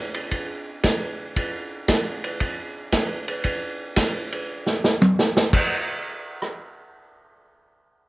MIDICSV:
0, 0, Header, 1, 2, 480
1, 0, Start_track
1, 0, Tempo, 521059
1, 1251, Time_signature, 4, 2, 24, 8
1, 7452, End_track
2, 0, Start_track
2, 0, Title_t, "Drums"
2, 132, Note_on_c, 9, 51, 59
2, 224, Note_off_c, 9, 51, 0
2, 288, Note_on_c, 9, 51, 66
2, 291, Note_on_c, 9, 36, 18
2, 380, Note_off_c, 9, 51, 0
2, 383, Note_off_c, 9, 36, 0
2, 768, Note_on_c, 9, 44, 64
2, 768, Note_on_c, 9, 51, 73
2, 771, Note_on_c, 9, 38, 80
2, 774, Note_on_c, 9, 36, 28
2, 860, Note_off_c, 9, 44, 0
2, 860, Note_off_c, 9, 51, 0
2, 863, Note_off_c, 9, 38, 0
2, 867, Note_off_c, 9, 36, 0
2, 1255, Note_on_c, 9, 51, 72
2, 1256, Note_on_c, 9, 36, 25
2, 1347, Note_off_c, 9, 51, 0
2, 1349, Note_off_c, 9, 36, 0
2, 1733, Note_on_c, 9, 44, 75
2, 1733, Note_on_c, 9, 51, 82
2, 1735, Note_on_c, 9, 38, 91
2, 1738, Note_on_c, 9, 36, 27
2, 1825, Note_off_c, 9, 44, 0
2, 1825, Note_off_c, 9, 51, 0
2, 1827, Note_off_c, 9, 38, 0
2, 1830, Note_off_c, 9, 36, 0
2, 2062, Note_on_c, 9, 51, 58
2, 2154, Note_off_c, 9, 51, 0
2, 2213, Note_on_c, 9, 51, 71
2, 2218, Note_on_c, 9, 36, 24
2, 2305, Note_off_c, 9, 51, 0
2, 2310, Note_off_c, 9, 36, 0
2, 2693, Note_on_c, 9, 44, 61
2, 2693, Note_on_c, 9, 51, 78
2, 2695, Note_on_c, 9, 38, 74
2, 2697, Note_on_c, 9, 36, 21
2, 2785, Note_off_c, 9, 44, 0
2, 2785, Note_off_c, 9, 51, 0
2, 2787, Note_off_c, 9, 38, 0
2, 2789, Note_off_c, 9, 36, 0
2, 3021, Note_on_c, 9, 51, 54
2, 3113, Note_off_c, 9, 51, 0
2, 3166, Note_on_c, 9, 51, 68
2, 3175, Note_on_c, 9, 36, 23
2, 3258, Note_off_c, 9, 51, 0
2, 3267, Note_off_c, 9, 36, 0
2, 3650, Note_on_c, 9, 44, 68
2, 3650, Note_on_c, 9, 51, 92
2, 3653, Note_on_c, 9, 38, 79
2, 3656, Note_on_c, 9, 36, 27
2, 3742, Note_off_c, 9, 44, 0
2, 3742, Note_off_c, 9, 51, 0
2, 3745, Note_off_c, 9, 38, 0
2, 3748, Note_off_c, 9, 36, 0
2, 3983, Note_on_c, 9, 51, 57
2, 4075, Note_off_c, 9, 51, 0
2, 4298, Note_on_c, 9, 38, 59
2, 4390, Note_off_c, 9, 38, 0
2, 4461, Note_on_c, 9, 38, 89
2, 4554, Note_off_c, 9, 38, 0
2, 4619, Note_on_c, 9, 44, 65
2, 4621, Note_on_c, 9, 48, 79
2, 4711, Note_off_c, 9, 44, 0
2, 4714, Note_off_c, 9, 48, 0
2, 4782, Note_on_c, 9, 38, 84
2, 4874, Note_off_c, 9, 38, 0
2, 4944, Note_on_c, 9, 38, 105
2, 5037, Note_off_c, 9, 38, 0
2, 5096, Note_on_c, 9, 36, 61
2, 5099, Note_on_c, 9, 49, 66
2, 5188, Note_off_c, 9, 36, 0
2, 5191, Note_off_c, 9, 49, 0
2, 5914, Note_on_c, 9, 37, 60
2, 6006, Note_off_c, 9, 37, 0
2, 7452, End_track
0, 0, End_of_file